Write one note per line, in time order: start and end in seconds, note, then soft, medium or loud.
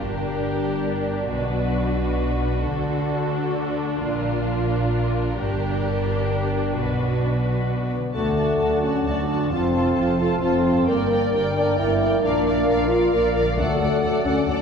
0.00 1.30 G1 soft
0.00 1.30 G2 soft
0.00 1.35 G2 soft
0.00 0.27 D4 soft
0.00 2.64 D4 soft
0.00 1.33 G4 soft
0.00 0.56 A#4 soft
0.00 1.28 A#4 soft
0.00 1.29 A#4 soft
0.00 0.72 D5 soft
0.13 1.35 D3 soft
0.28 1.62 D4 soft
0.43 1.34 G4 soft
0.57 1.17 A#4 soft
0.73 1.02 D5 soft
0.88 1.35 G5 soft
1.03 2.07 D5 soft
1.18 1.34 A#4 soft
1.31 2.65 B1 soft
1.31 2.65 B2 soft
1.31 2.70 B2 soft
1.31 3.99 F#4 soft
1.31 2.65 F#4 soft
1.31 2.65 B4 soft
1.48 4.05 F#3 soft
1.63 2.98 D4 soft
1.78 3.13 F#4 soft
1.93 2.53 B4 soft
2.08 2.37 D5 soft
2.24 3.60 F#5 soft
2.39 3.44 D5 soft
2.54 2.70 B4 soft
2.66 4.00 D2 soft
2.66 4.01 D3 soft
2.66 4.06 D3 soft
2.66 5.34 D4 soft
2.66 5.35 D4 soft
2.66 3.86 F#4 soft
2.66 4.00 A4 soft
2.83 4.05 A3 soft
2.99 4.35 D4 soft
3.14 4.05 F#4 soft
3.29 3.88 A4 soft
3.45 3.73 D5 soft
3.61 4.06 F#5 soft
3.74 4.80 D5 soft
3.89 4.05 A4 soft
4.03 5.37 A#1 soft
4.03 5.36 A#2 soft
4.03 5.42 A#2 soft
4.03 5.36 F4 soft
4.03 5.35 F4 soft
4.03 6.72 A#4 soft
4.21 5.42 F3 soft
4.36 5.69 D4 soft
4.51 5.42 F4 soft
4.66 5.24 A#4 soft
4.82 5.09 D5 soft
4.97 5.42 F5 soft
5.11 6.13 D5 soft
5.25 5.98 A#4 soft
5.38 6.77 G1 soft
5.38 6.76 G2 medium
5.38 6.79 G2 soft
5.38 7.64 D4 medium
5.38 7.91 D4 soft
5.38 6.73 G4 soft
5.38 6.72 A#4 medium
5.55 6.79 D3 soft
5.70 7.07 D4 soft
5.85 6.78 G4 soft
5.99 6.59 A#4 soft
6.15 6.43 D5 soft
6.30 6.78 G5 soft
6.44 7.52 D5 soft
6.60 6.77 A#4 soft
6.76 7.95 B1 soft
6.76 7.94 B2 soft
6.76 8.16 B2 soft
6.76 7.92 F#4 soft
6.76 7.64 B4 soft
6.76 7.92 B4 soft
6.92 9.53 F#3 soft
7.09 8.00 D4 soft
7.23 8.04 F#4 soft
7.38 7.97 B4 soft
7.53 7.81 D5 soft
7.67 8.11 B3 medium
7.67 9.52 F#5 soft
7.82 9.51 D5 soft
7.96 9.43 D3 soft
7.96 8.16 B4 soft
8.01 9.46 D4 soft
8.01 9.48 F#4 soft
8.10 9.44 A4 soft
8.10 10.89 A4 soft
8.14 8.54 D2 soft
8.14 8.55 D2 soft
8.14 9.47 F#3 soft
8.14 8.83 A3 medium
8.14 9.46 D4 soft
8.14 8.35 F#4 soft
8.14 8.36 F#4 soft
8.14 9.47 D5 soft
8.14 9.46 F#5 soft
8.14 8.36 A5 soft
8.37 8.59 F#4 soft
8.37 8.58 A5 soft
8.59 9.00 D2 soft
8.59 8.82 F#4 soft
8.59 8.83 F#4 soft
8.59 8.82 A5 soft
8.81 9.04 C#4 medium
8.81 9.04 F#4 soft
8.81 9.05 F#4 soft
8.81 9.04 A5 soft
9.05 9.45 D2 soft
9.05 9.51 D4 soft
9.05 9.27 F#4 soft
9.05 9.28 F#4 soft
9.05 9.27 A5 soft
9.29 10.79 F2 soft
9.29 9.50 F#4 soft
9.29 9.51 F#4 soft
9.29 9.51 A5 soft
9.37 10.82 C4 soft
9.41 10.84 F4 soft
9.46 9.90 F2 soft
9.46 10.86 A4 soft
9.51 9.91 F1 soft
9.51 10.83 F3 soft
9.51 10.83 A3 soft
9.51 10.17 C4 medium
9.51 9.72 F4 soft
9.51 9.73 A4 soft
9.51 10.88 C5 soft
9.51 10.84 F5 soft
9.51 9.72 A5 soft
9.74 9.96 F4 soft
9.74 9.96 A4 soft
9.74 9.95 A5 soft
9.96 10.36 F1 soft
9.96 10.36 F2 soft
9.96 10.18 F4 soft
9.96 10.18 A4 soft
9.96 10.18 A5 soft
10.19 10.40 F4 soft
10.19 10.42 F4 medium
10.19 10.41 A4 soft
10.19 10.41 A5 soft
10.40 10.81 F1 soft
10.40 10.81 F2 soft
10.40 10.85 C4 medium
10.40 10.62 F4 soft
10.40 10.65 A4 soft
10.40 10.64 A5 soft
10.64 10.86 F4 soft
10.64 10.87 A4 soft
10.64 10.87 A5 soft
10.69 12.15 G2 soft
10.73 12.17 G3 soft
10.73 12.13 D4 soft
10.82 11.26 G2 soft
10.82 12.18 A#4 soft
10.82 11.08 G5 soft
10.87 11.27 G1 medium
10.87 12.19 D3 soft
10.87 11.37 A#3 medium
10.87 13.55 A#3 soft
10.87 11.08 A#4 soft
10.87 13.58 A#4 soft
10.87 13.57 D5 soft
10.87 11.10 D5 soft
10.87 12.20 G5 soft
11.09 11.31 A#4 soft
11.09 11.33 D5 soft
11.09 11.31 G5 soft
11.31 11.72 G1 soft
11.31 11.71 G2 soft
11.31 11.54 A#4 soft
11.31 11.55 D5 soft
11.31 11.53 G5 soft
11.54 11.76 D4 medium
11.54 11.76 A#4 soft
11.54 11.77 D5 soft
11.54 11.75 G5 soft
11.76 12.17 G1 medium
11.76 12.17 G2 soft
11.76 12.22 E4 medium
11.76 11.98 A#4 soft
11.76 11.99 D5 soft
11.76 11.99 G5 soft
11.99 12.21 A#4 soft
11.99 12.22 D5 soft
11.99 12.22 G5 soft
12.06 13.51 A#2 soft
12.10 13.53 F3 soft
12.15 14.62 D4 soft
12.19 12.62 A#1 medium
12.19 12.62 A#2 medium
12.19 12.88 D4 medium
12.19 13.58 A#4 soft
12.23 13.54 F3 medium
12.23 12.44 A#4 soft
12.23 12.45 D5 soft
12.23 13.58 F5 medium
12.23 12.45 F5 soft
12.46 12.67 A#4 soft
12.46 12.68 D5 soft
12.46 12.68 F5 soft
12.67 13.07 A#1 medium
12.67 13.07 A#2 medium
12.67 12.88 A#4 soft
12.67 12.89 D5 soft
12.67 12.89 F5 soft
12.89 13.12 F4 medium
12.89 13.11 A#4 soft
12.89 13.12 D5 soft
12.89 13.12 F5 soft
13.12 13.53 A#1 medium
13.12 13.52 A#2 soft
13.12 13.33 A#4 medium
13.12 13.35 D5 soft
13.12 13.32 F5 soft
13.34 13.57 A#4 soft
13.34 13.58 D5 soft
13.34 13.56 F5 soft
13.39 14.62 D3 soft
13.44 14.62 F#3 soft
13.48 14.62 F#4 soft
13.53 14.20 A3 medium
13.53 14.62 A4 soft
13.53 14.62 F#5 medium
13.53 13.78 F#5 medium
13.57 13.65 D2 medium
13.57 13.66 D2 medium
13.57 14.21 D3 medium
13.57 14.62 F#3 medium
13.57 14.62 A3 medium
13.57 14.62 A4 medium
13.57 13.80 A4 soft
13.57 14.62 D5 medium
13.57 13.80 D5 soft
13.79 13.87 D2 soft
13.79 13.88 D2 soft
13.79 14.02 A4 soft
13.79 14.02 D5 soft
13.79 14.01 F#5 soft
14.02 14.10 D2 medium
14.02 14.24 A4 soft
14.02 14.25 D5 soft
14.02 14.23 F#5 soft
14.24 14.33 D2 medium
14.24 14.34 D2 soft
14.24 14.47 C#4 medium
14.24 14.47 A4 soft
14.24 14.48 D5 soft
14.24 14.45 F#5 soft
14.44 14.55 D2 soft
14.44 14.55 D2 medium
14.44 14.62 D4 medium
14.44 14.62 F#5 soft
14.48 14.62 A4 soft
14.48 14.62 D5 soft